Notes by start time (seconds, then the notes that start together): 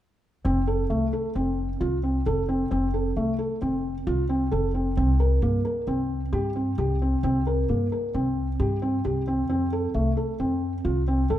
0.45 F1 C4
0.67 A4
0.90 C2 A3
1.13 A4
1.35 F1 C4
1.80 C2 F4
2.03 C4
2.26 F1 A4
2.49 C4
2.71 F1 C4
2.94 A4
3.16 C2 A3
3.39 A4
3.62 F1 C4
4.07 C2 F4
4.29 C4
4.51 F1 A4
4.74 C4
4.97 C2 C4
5.20 A#4
5.42 G2 A#3
5.65 A#4
5.87 C2 C4
6.33 G2 G4
6.56 C4
6.78 C2 G4
7.02 C4
7.23 C2 C4
7.47 A#4
7.69 G2 A#3
7.92 A#4
8.14 C2 C4
8.59 G2 G4
8.82 C4
9.05 C2 G4
9.28 C4
9.49 F2 C4
9.73 A4
9.94 C2 A3
10.17 A4
10.40 F2 C4
10.85 C2 F4
11.08 C4
11.30 F2 A4